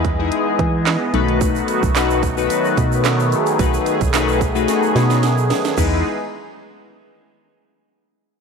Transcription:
Already playing: E2 E3 G#3 B3 G#4 D#5
0.05 kick, closed hi-hat
0.19 G#3 D#4 E4 G#4
0.32 closed hi-hat
0.59 E3, kick, closed hi-hat
0.86 snare, clap, closed hi-hat
1.14 B1 D#3 F#3 A3 D#4 F#4 B4, closed hi-hat
1.28 closed hi-hat
1.41 kick, closed hi-hat, shaker
1.56 shaker
1.68 closed hi-hat, shaker
1.83 B1, kick, shaker
1.95 A3 D#4 F#4 B4, snare, clap, closed hi-hat, shaker
2.10 shaker
2.23 kick, closed hi-hat, shaker
2.37 A3 D#4 F#4 B4, shaker
2.50 closed hi-hat, shaker
2.65 shaker
2.77 B2, kick, closed hi-hat, shaker
2.92 shaker
3.05 snare, clap, closed hi-hat, shaker
3.20 shaker
3.32 G#4, closed hi-hat, shaker
3.46 closed hi-hat, shaker
3.59 B1 A3 D#4 F#4 B4, kick, closed hi-hat, shaker
3.74 shaker
3.86 closed hi-hat, shaker
4.01 B1, kick, closed hi-hat, shaker
4.13 A3 D#4 F#4 B4, snare, clap, closed hi-hat, shaker
4.28 shaker
4.41 kick, closed hi-hat, shaker
4.55 A3 D#4 F#4 B4, shaker
4.68 snare, closed hi-hat, shaker
4.83 shaker
4.96 B2, snare, closed hi-hat, shaker
5.10 snare, shaker
5.23 snare, closed hi-hat, shaker
5.38 shaker
5.50 snare, open hi-hat, shaker
5.65 snare, closed hi-hat, shaker
5.77 E2 E3 G#3 B3 D#4 E4 G#4 B4, kick, crash, shaker

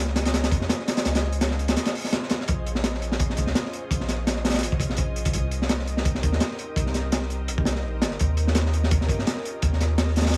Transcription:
Already playing: C#2 C#4 F4 G#4 C5 D#5
0.07 snare
0.16 snare, closed hi-hat
0.25 snare, closed hi-hat
0.34 snare, closed hi-hat
0.43 snare, closed hi-hat
0.51 F2, kick, closed hi-hat
0.61 snare
0.69 snare, closed hi-hat
0.79 snare
0.88 snare, closed hi-hat
0.97 snare, closed hi-hat
1.05 C#2, snare, closed hi-hat
1.15 snare, closed hi-hat
1.23 snare
1.32 C#4 F4 G#4 C5 D#5, closed hi-hat
1.41 snare, closed hi-hat
1.51 snare
1.59 closed hi-hat
1.68 snare, closed hi-hat
1.77 snare, closed hi-hat
1.86 snare, closed hi-hat
1.94 C#4 F4 G#4 C5 D#5, open hi-hat
2.04 snare
2.13 snare, closed hi-hat
2.22 snare
2.30 snare, closed hi-hat
2.40 snare
2.48 A#1, kick, closed hi-hat
2.66 closed hi-hat
2.75 C#4 F4 G#4 C5 D#5, snare
2.84 snare, closed hi-hat
2.94 snare
3.02 closed hi-hat
3.12 snare
3.20 kick, closed hi-hat
3.30 snare
3.37 C#2, kick, closed hi-hat
3.47 snare
3.55 snare, closed hi-hat
3.65 snare
3.73 closed hi-hat
3.91 A#1, kick, closed hi-hat
4.00 snare
4.08 snare, closed hi-hat
4.19 C#4 F4 G#4 C5 D#5
4.27 snare, closed hi-hat
4.36 snare
4.45 snare, closed hi-hat
4.50 snare, closed hi-hat
4.54 snare, closed hi-hat
4.58 snare, closed hi-hat
4.62 G#1, closed hi-hat
4.72 kick
4.80 A#1, kick, closed hi-hat
4.90 snare
4.97 kick, closed hi-hat
5.16 closed hi-hat
5.25 kick, closed hi-hat
5.33 C2, kick, closed hi-hat
5.51 closed hi-hat
5.61 C4 D#4 G4 A#4 D#5, snare
5.69 snare, closed hi-hat
5.79 snare
5.87 closed hi-hat
5.97 snare
6.05 kick, closed hi-hat
6.15 snare
6.23 D#2, kick, closed hi-hat
6.33 snare
6.40 snare, closed hi-hat
6.51 snare
6.59 closed hi-hat
6.76 C2, kick, closed hi-hat
6.86 snare
6.94 snare, closed hi-hat
7.04 C4 D#4 G4 A#4 D#5
7.12 snare, closed hi-hat
7.22 snare
7.30 closed hi-hat
7.48 A#1, closed hi-hat
7.58 kick
7.65 C2 C4 D#4 G4 A#4 D#5, snare, closed hi-hat
7.75 snare
7.84 A#1
8.02 G1, snare, closed hi-hat
8.11 snare
8.19 D#2, kick, closed hi-hat
8.37 closed hi-hat
8.47 C#4 F4 G4 A#4 D#5, snare
8.55 snare, closed hi-hat
8.66 snare
8.73 closed hi-hat
8.83 snare
8.91 kick, closed hi-hat
9.01 snare
9.09 G2, kick, closed hi-hat
9.19 snare
9.27 snare, closed hi-hat
9.37 snare
9.45 closed hi-hat
9.62 D#2, kick, closed hi-hat
9.73 snare
9.80 snare, closed hi-hat
9.90 C#4 F4 G4 A#4 D#5
9.98 snare, closed hi-hat
10.07 snare
10.16 snare, closed hi-hat
10.21 snare, closed hi-hat
10.25 snare, closed hi-hat
10.29 snare, closed hi-hat
10.34 C#2, closed hi-hat

